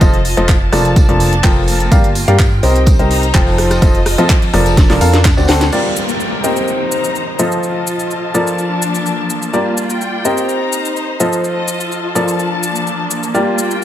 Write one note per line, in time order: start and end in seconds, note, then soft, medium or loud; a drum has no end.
0.00 0.35 F1 medium
0.00 0.17 F3 loud
0.00 0.16 D#4 medium
0.00 1.20 F4 medium
0.00 0.17 F4 medium
0.00 0.17 A4 medium
0.00 0.16 C5 medium
0.00 0.17 C5 medium
0.00 0.73 D#5 medium
0.00 0.17 D#5 loud
0.00 2.20 A5 medium
0.00 kick loud
0.00 closed hi-hat medium
0.00 tambourine medium
0.14 closed hi-hat soft
0.25 open hi-hat loud
0.25 tambourine medium
0.37 0.70 F1 medium
0.37 0.52 F3 medium
0.37 0.52 F4 medium
0.37 0.52 A4 medium
0.37 0.52 C5 medium
0.37 0.52 D#5 loud
0.37 snare medium
0.37 closed hi-hat medium
0.49 kick loud
0.49 snare loud
0.49 clap loud
0.49 closed hi-hat medium
0.49 tambourine medium
0.72 1.06 F1 medium
0.72 1.06 F3 medium
0.72 2.20 D4 medium
0.72 1.06 F4 medium
0.72 1.06 A4 medium
0.72 1.06 A#4 medium
0.72 1.06 D5 loud
0.72 cross-stick medium
0.72 open hi-hat loud
0.72 tambourine medium
0.85 closed hi-hat medium
0.96 3.02 A#3 medium
0.96 kick loud
0.96 closed hi-hat medium
0.96 tambourine medium
1.09 1.42 F1 loud
1.09 1.33 F3 medium
1.09 1.33 F4 medium
1.09 1.33 A4 medium
1.09 1.33 A#4 medium
1.09 1.33 D5 medium
1.09 closed hi-hat soft
1.20 open hi-hat loud
1.20 tambourine medium
1.33 closed hi-hat medium
1.44 1.89 F1 loud
1.44 1.89 F3 medium
1.44 1.89 F4 medium
1.44 1.89 A4 medium
1.44 1.89 A#4 medium
1.44 1.89 G5 loud
1.44 kick loud
1.44 snare loud
1.44 clap loud
1.44 closed hi-hat medium
1.44 open hi-hat medium
1.68 open hi-hat loud
1.68 tambourine medium
1.80 closed hi-hat medium
1.92 2.25 G1 medium
1.92 2.07 G3 medium
1.92 3.01 F4 medium
1.92 2.07 G4 medium
1.92 2.07 A#4 medium
1.92 2.07 D5 medium
1.92 2.07 F5 loud
1.92 kick loud
1.92 closed hi-hat medium
1.92 tambourine medium
2.04 closed hi-hat soft
2.15 open hi-hat loud
2.15 tambourine medium
2.24 2.61 G2 loud
2.24 2.43 G3 medium
2.24 2.43 G4 medium
2.24 2.43 A#4 medium
2.24 2.43 D5 medium
2.24 2.43 F5 loud
2.24 3.02 G5 medium
2.24 snare soft
2.24 closed hi-hat medium
2.39 kick loud
2.39 snare loud
2.39 clap loud
2.39 closed hi-hat medium
2.39 tambourine medium
2.63 2.97 C2 loud
2.63 2.96 C4 medium
2.63 3.97 D#4 medium
2.63 2.96 G4 medium
2.63 2.96 A#4 medium
2.63 2.96 C5 medium
2.63 2.96 D#5 loud
2.63 open hi-hat loud
2.63 tambourine medium
2.69 3.97 C5 medium
2.76 snare soft
2.76 closed hi-hat medium
2.86 kick loud
2.86 closed hi-hat medium
2.86 tambourine medium
2.99 3.32 C2 loud
2.99 3.24 C4 medium
2.99 3.24 G4 medium
2.99 3.24 A#4 medium
2.99 3.24 C5 medium
2.99 3.24 D#5 medium
2.99 3.58 A#5 medium
2.99 closed hi-hat soft
3.10 snare loud
3.10 open hi-hat medium
3.10 open hi-hat loud
3.23 closed hi-hat medium
3.34 3.80 F1 medium
3.34 3.79 F3 medium
3.34 3.79 F4 medium
3.34 3.79 A4 medium
3.34 3.79 C5 medium
3.34 3.79 G5 loud
3.34 kick loud
3.34 clap loud
3.34 closed hi-hat medium
3.34 tambourine medium
3.47 snare loud
3.47 open hi-hat medium
3.58 4.82 F4 medium
3.58 cross-stick medium
3.58 open hi-hat loud
3.67 4.54 D#5 medium
3.67 cross-stick medium
3.67 closed hi-hat medium
3.67 tambourine medium
3.77 5.44 A5 medium
3.82 4.16 F1 medium
3.82 3.98 F3 medium
3.82 3.98 F4 medium
3.82 3.98 A4 medium
3.82 3.98 C5 medium
3.82 3.98 D#5 loud
3.82 kick loud
3.82 closed hi-hat medium
3.82 tambourine medium
3.95 closed hi-hat soft
4.05 cross-stick medium
4.05 snare loud
4.05 open hi-hat loud
4.05 open hi-hat medium
4.18 4.51 F2 loud
4.18 4.33 F3 medium
4.18 4.33 F4 medium
4.18 4.33 A4 medium
4.18 4.33 C5 medium
4.18 4.33 D#5 loud
4.18 closed hi-hat medium
4.29 kick loud
4.29 clap loud
4.29 closed hi-hat medium
4.29 tambourine medium
4.42 snare medium
4.42 closed hi-hat soft
4.42 open hi-hat medium
4.53 4.87 F1 loud
4.53 4.87 F3 medium
4.53 6.01 D4 medium
4.53 4.87 F4 medium
4.53 4.87 A4 medium
4.53 4.87 A#4 medium
4.53 4.87 D5 medium
4.53 cross-stick medium
4.53 open hi-hat loud
4.64 5.25 A#4 medium
4.64 closed hi-hat medium
4.64 tambourine medium
4.77 kick loud
4.77 snare medium
4.77 closed hi-hat medium
4.77 tambourine medium
4.90 4.99 F1 medium
4.90 4.99 F3 medium
4.90 4.99 F4 medium
4.90 4.99 A4 medium
4.90 4.99 A#4 medium
4.90 4.99 D5 medium
4.90 snare medium
4.90 open hi-hat medium
5.01 5.35 F2 loud
5.01 5.17 F4 medium
5.01 5.17 A4 medium
5.01 5.17 A#4 medium
5.01 5.17 F5 medium
5.01 open hi-hat loud
5.01 tambourine medium
5.14 snare medium
5.14 closed hi-hat medium
5.24 kick loud
5.24 snare medium
5.24 snare loud
5.24 clap loud
5.24 closed hi-hat medium
5.24 tambourine medium
5.37 5.47 D2 loud
5.37 5.47 D3 medium
5.37 5.47 C4 medium
5.37 5.47 D4 medium
5.37 5.47 F#4 medium
5.37 5.47 D5 medium
5.37 snare loud
5.37 tambourine medium
5.46 5.70 D2 loud
5.46 5.64 C4 medium
5.46 5.64 D4 medium
5.46 5.64 F#4 medium
5.46 5.64 A4 medium
5.46 6.01 C5 medium
5.46 5.73 F#5 medium
5.46 snare loud
5.46 open hi-hat loud
5.46 tambourine medium
5.61 snare medium
5.61 closed hi-hat medium
5.61 tambourine medium
5.73 6.41 G3 medium
5.73 6.82 F4 medium
5.73 6.41 F4 medium
5.73 6.41 G4 medium
5.73 6.41 A#4 medium
5.73 6.41 D5 medium
5.73 crash medium
5.73 downlifter medium
5.73 cabasa soft
5.96 cabasa medium
6.05 6.82 A#4 medium
6.05 6.82 G5 medium
6.05 cabasa soft
6.20 cabasa soft
6.44 7.37 C4 medium
6.44 7.78 D#4 medium
6.44 7.36 G4 medium
6.44 7.36 A#4 medium
6.44 7.37 C5 medium
6.44 7.37 D#5 medium
6.44 cabasa medium
6.56 cabasa soft
6.66 7.78 C5 medium
6.66 cabasa soft
6.87 7.39 A#5 medium
6.92 cabasa medium
7.04 cabasa soft
7.15 cabasa soft
7.39 8.32 F3 medium
7.39 8.82 F4 medium
7.39 8.32 F4 medium
7.39 8.32 A4 medium
7.39 8.32 C5 medium
7.39 8.32 D#5 medium
7.39 cabasa medium
7.52 cabasa soft
7.57 9.82 A5 medium
7.63 8.34 D#5 medium
7.63 cabasa soft
7.87 cabasa medium
7.99 cabasa soft
8.11 cabasa soft
8.34 9.53 F3 medium
8.34 9.51 F3 medium
8.34 9.51 F4 medium
8.34 9.51 A4 medium
8.34 9.51 A#4 medium
8.34 9.51 D5 medium
8.34 cabasa medium
8.44 9.82 D4 medium
8.44 cabasa soft
8.58 cabasa soft
8.82 cabasa medium
8.88 10.63 A#3 medium
8.95 cabasa soft
9.06 cabasa soft
9.30 cabasa medium
9.42 cabasa soft
9.53 10.22 G3 medium
9.53 10.22 F4 medium
9.53 10.64 F4 medium
9.53 10.22 G4 medium
9.53 10.22 A#4 medium
9.53 10.22 D5 medium
9.53 cabasa soft
9.77 cabasa medium
9.86 10.63 G5 medium
9.86 cabasa soft
10.01 cabasa soft
10.25 11.17 C4 medium
10.25 11.59 D#4 medium
10.25 11.17 G4 medium
10.25 11.17 A#4 medium
10.25 11.17 C5 medium
10.25 11.17 D#5 medium
10.25 cabasa medium
10.38 cabasa soft
10.42 11.20 A#5 medium
10.49 11.59 C5 medium
10.49 cabasa soft
10.73 cabasa medium
10.85 cabasa soft
10.96 cabasa soft
11.20 12.13 F3 medium
11.20 12.63 F4 medium
11.20 12.13 F4 medium
11.20 12.13 A4 medium
11.20 12.13 C5 medium
11.20 12.13 D#5 medium
11.20 cabasa medium
11.33 cabasa soft
11.44 cabasa soft
11.49 12.15 D#5 medium
11.49 13.63 A5 medium
11.68 cabasa medium
11.80 cabasa soft
11.92 cabasa soft
12.15 13.32 F3 medium
12.15 13.34 F3 medium
12.15 13.32 F4 medium
12.15 13.32 A4 medium
12.15 13.32 A#4 medium
12.15 13.32 D5 medium
12.15 cabasa medium
12.28 13.63 D4 medium
12.28 cabasa soft
12.39 cabasa soft
12.63 cabasa medium
12.69 13.84 A#3 medium
12.76 cabasa soft
12.87 cabasa soft
13.11 cabasa medium
13.23 cabasa soft
13.34 13.84 G3 medium
13.34 13.84 F4 medium
13.34 13.84 G4 medium
13.34 13.84 A#4 medium
13.34 13.84 D5 medium
13.34 cabasa soft
13.58 13.84 G5 medium
13.58 cabasa medium
13.71 cabasa soft